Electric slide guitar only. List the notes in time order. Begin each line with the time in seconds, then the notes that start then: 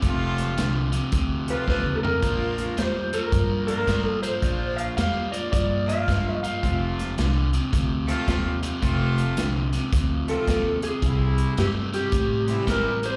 1.50 B4
1.70 B4
1.96 A4
2.03 A#4
2.79 C5
3.14 A#4
3.67 A#4
4.05 A4
4.23 C5
4.76 F5
4.97 F5
5.32 D5
5.52 D5
5.89 F5
6.43 F5
10.29 A4
10.83 G#4
11.59 G4
11.94 G4
12.68 A#4
13.06 C5